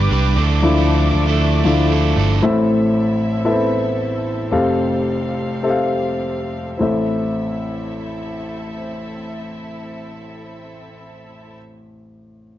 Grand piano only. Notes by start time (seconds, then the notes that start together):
Already playing: G3 B3 D4
0.62 F3 D4 E4
1.65 F3 D4 E4
2.42 A1 A2 C4 E4 A4 E5
3.45 B3 E4 A4 E5
3.51 C4
4.51 F1 F2 C4 G4 A4 F5
5.63 C4 G4 A4 E5
5.70 F5
6.78 A1 C4 E4 A4
6.82 E5